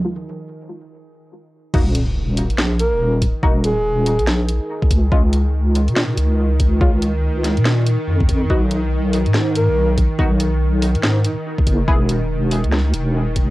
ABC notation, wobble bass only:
X:1
M:4/4
L:1/16
Q:"Swing 16ths" 1/4=142
K:Ebm
V:1 name="Wobble bass" clef=bass
z16 | E,,,6- E,,, B,,,4 E,,,4 z | E,,,6- E,,, B,,,4 z3 D,,2 | D,,6- D,, B,,3 D,,6 |
D,,6- D,, B,,4 z F,,2 F,,2 | =B,,,6- B,,, A,,4 B,,,4 z | =B,,,6- B,,, A,,4 z3 ^F,,,2 | =E,,,6- E,,, D,,3 E,,,6 |]